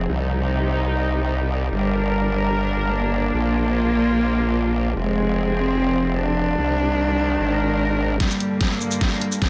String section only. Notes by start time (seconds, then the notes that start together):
0.09 C3 G3 D#4
1.72 D4 A#4
3.34 A#3 F4
4.96 F3 C4 G#4
6.58 C3 D#3 G3
7.39 G#3 A#4
8.20 G2 D3 A#3